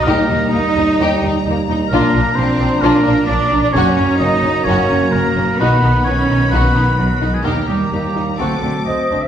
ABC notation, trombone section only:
X:1
M:4/4
L:1/8
Q:1/4=130
K:Eblyd
V:1 name="Trombone section" clef=bass
[G,^D]8 | [F,D]8 | [_G,B,]8 | [^D,=B,]4 [D,B,]2 [D,B,]2 |
[E,B,]2 [E,B,]2 [^F,C]3 z |]